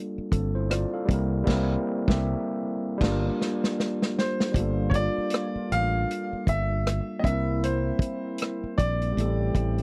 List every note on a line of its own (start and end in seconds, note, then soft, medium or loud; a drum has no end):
0.00 1.03 G3 medium
0.00 1.04 A#3 medium
0.00 0.28 D4 medium
0.00 0.29 F4 medium
0.00 0.30 A4 medium
0.18 muted fretless electric bass stroke soft
0.32 0.84 G1 medium
0.32 0.54 C4 soft
0.32 0.53 A4 medium
0.32 kick medium
0.32 closed hi-hat medium
0.55 0.70 E4 medium
0.55 0.70 C5 medium
0.70 0.92 F4 medium
0.70 0.91 D5 medium
0.70 cross-stick medium
0.70 closed hi-hat medium
0.94 1.30 A4 medium
0.94 1.30 F5 medium
1.05 1.42 G3 medium
1.05 1.44 A#3 medium
1.05 1.47 C4 medium
1.05 kick medium
1.10 1.42 C2 medium
1.10 1.48 E4 medium
1.10 1.49 A#4 medium
1.10 closed hi-hat medium
1.44 1.72 G3 medium
1.44 1.73 A#3 medium
1.44 kick medium
1.44 crash medium
1.48 1.75 C2 medium
1.48 1.75 C4 medium
1.48 1.76 E4 medium
1.48 1.77 A#4 medium
1.48 snare medium
2.08 2.34 C2 medium
2.08 2.34 G4 medium
2.08 2.34 E5 medium
2.08 kick medium
2.08 snare medium
2.98 3.26 G3 medium
2.98 3.27 A#3 medium
2.98 3.28 D4 medium
2.98 kick medium
2.98 crash medium
3.02 3.29 G1 loud
3.02 3.30 F4 medium
3.02 snare medium
3.12 3.34 A#4 medium
3.41 snare medium
3.64 snare medium
3.80 snare medium
4.02 snare medium
4.18 4.91 C5 medium
4.18 snare medium
4.40 snare medium
4.52 5.07 G1 medium
4.52 7.18 G3 medium
4.52 4.62 A3 soft
4.52 6.81 A#3 medium
4.52 6.81 D4 medium
4.52 7.20 D4 medium
4.52 6.81 F4 medium
4.52 kick loud
4.52 closed hi-hat medium
4.58 7.20 A#3 medium
4.58 7.21 F4 medium
4.58 7.22 A4 medium
4.90 4.94 C#5 medium
4.90 kick medium
4.94 5.74 D5 medium
4.94 closed hi-hat medium
5.18 muted fretless electric bass stroke soft
5.30 cross-stick loud
5.30 closed hi-hat medium
5.55 muted fretless electric bass stroke soft
5.72 6.04 A1 medium
5.72 6.44 F5 loud
5.72 closed hi-hat medium
6.11 closed hi-hat medium
6.33 muted fretless electric bass stroke soft
6.47 6.99 G1 medium
6.47 7.21 E5 medium
6.47 kick medium
6.47 closed hi-hat medium
6.87 cross-stick medium
6.87 closed hi-hat medium
7.19 9.10 G3 medium
7.19 9.11 A#3 medium
7.19 9.12 C4 medium
7.19 7.25 D#5 medium
7.24 7.90 C2 medium
7.24 8.75 A#3 medium
7.24 8.75 C4 medium
7.24 7.32 D4 soft
7.24 8.75 E4 medium
7.24 9.14 A#4 medium
7.24 7.64 E5 medium
7.24 kick medium
7.24 closed hi-hat medium
7.32 9.17 E4 medium
7.64 8.74 C5 medium
7.64 closed hi-hat medium
7.99 kick medium
7.99 closed hi-hat medium
8.38 cross-stick loud
8.38 closed hi-hat medium
8.64 muted fretless electric bass stroke soft
8.78 9.12 A#1 medium
8.78 9.82 D5 medium
8.78 kick medium
8.78 closed hi-hat medium
9.02 closed hi-hat soft
9.12 9.82 G3 medium
9.12 9.82 A3 medium
9.12 9.82 C4 medium
9.16 9.50 A1 medium
9.16 9.24 B3 soft
9.16 9.82 E4 medium
9.16 9.82 G4 medium
9.16 closed hi-hat medium
9.21 9.82 C4 medium
9.21 9.82 A4 medium
9.55 9.82 A1 medium
9.55 kick medium
9.55 closed hi-hat medium
9.78 closed hi-hat soft